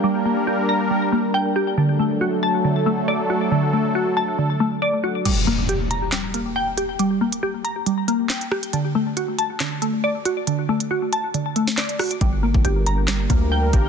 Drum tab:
CC |----------------|----------------|----------------|x---------------|
HH |----------------|----------------|----------------|x---x-x-x-x---x-|
CP |----------------|----------------|----------------|--------x-------|
SD |----------------|----------------|----------------|--------o-------|
BD |----------------|----------------|----------------|----------------|

CC |----------------|----------------|----------------|----------------|
HH |x--x--x-x-x--x-x|x---x-x-x-x---x-|x--x--x-x-x--xox|x---x-x-x-x---x-|
CP |------------x---|--------x-------|------------x---|--------x-------|
SD |------------o-r-|--------o-------|-----------oo-r-|--------o-------|
BD |----------------|----------------|----------------|o--o------o---o-|